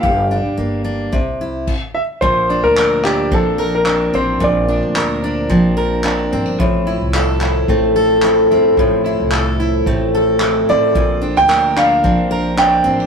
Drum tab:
CC |------x-|--------|--------|--------|
CP |--------|--xx--x-|--x---x-|--xx--x-|
BD |o---o-o-|o---o---|o---o---|o---o---|

CC |--------|--------|
CP |--x---x-|--xx--x-|
BD |o---o---|o---o---|